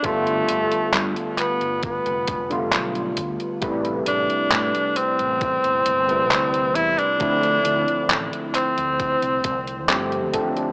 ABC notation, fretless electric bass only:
X:1
M:4/4
L:1/16
Q:1/4=67
K:Am
V:1 name="Fretless electric bass" clef=bass
G,,,2 G,,, z G,, z2 G,,,2 F,,, F,,,2 B,,,2 D,, z | A,,,2 A,,, z A,, z2 A,,,2 G,,, G,,,2 D,,2 E,, z | D,,2 D,, z A,,, z2 D,,2 C,, C,,2 G,,2 A,,, z |]